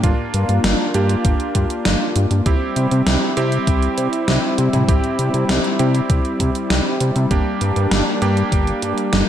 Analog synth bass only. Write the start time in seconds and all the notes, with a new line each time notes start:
0.04 G1
0.34 G2
0.49 G2
0.64 G1
0.95 G2
1.25 G1
1.55 G2
1.85 G1
2.16 G2
2.31 G2
2.46 C2
2.76 C3
2.92 C3
3.07 C2
3.37 C3
3.67 C2
3.98 C3
4.28 C2
4.58 C3
4.74 C3
4.89 C2
5.19 C3
5.34 C3
5.49 C2
5.80 C3
6.10 C2
6.40 C3
6.70 C2
7.01 C3
7.16 C3
7.31 G1
7.61 G2
7.76 G2
7.92 G1
8.22 G2
8.52 G1
8.83 G2
9.13 G1